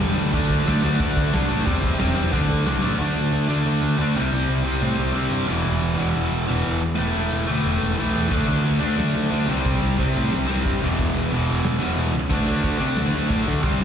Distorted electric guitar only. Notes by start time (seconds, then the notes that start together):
0.00 G2 D3 G3
0.15 G2 D3 G3
0.33 D3 A3 D4
0.67 D3 A3 D4
0.83 D3 A3 D4
1.00 D3 A3 D4
1.34 D3 A3 D4
1.50 D3 A3 D4
1.65 C3 G3 C4
1.99 C3 G3 C4
2.15 C3 G3 C4
2.33 D3 A3 D4
2.65 D3 A3 D4
2.82 D3 A3 D4
2.99 D3 A3 D4
3.48 A3 D4
3.52 D3
3.97 D3 A3
4.01 D4
4.15 C3 G3 C4
4.63 C3 G3
4.67 C4
5.12 G3 C4
5.17 C3
5.47 E2 B2 E3
5.96 E2 B2
6.00 E3
6.47 E2 B2 E3
6.95 A2 E3 A3
7.46 A2 E3 A3
7.95 A2 E3
7.99 A3
8.29 D3 A3
8.33 D4
8.79 D3 A3 D4
9.30 D3 A3
9.35 D4
9.47 C3 G3 C4
9.97 C3 G3
10.01 C4
10.46 G3 C4
10.50 C3
10.80 E2 B2 E3
11.31 E2 B2
11.35 E3
11.79 E2 B2 E3
12.29 D3 A3
12.34 D4
12.78 A3 D4
12.83 D3
13.28 D3 A3 D4
13.61 C3 G3 C4
13.79 C3 G3